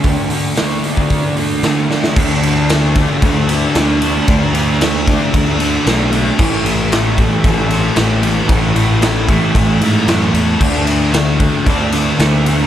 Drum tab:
CC |----------------|x---------------|----------------|x---------------|
RD |----------------|--x-x-x-x-x-x-x-|x-x-x-x-x-x-x-x-|--x-x-x-x-x-x-x-|
HH |o-o-o-o-o-o-o---|----------------|----------------|----------------|
SD |----o-------o-oo|----o-------o---|----o-------o---|----o-------o---|
BD |o------oo-------|o-----o-o-------|o-----o-o-------|o-----o-o-------|

CC |----------------|x---------------|
RD |x-x-x-x-x-x-x-x-|--x-x-x-x-x-x-x-|
HH |----------------|----------------|
SD |----o-------o---|----o-------o---|
BD |o-----o-o-------|o-----o-o-------|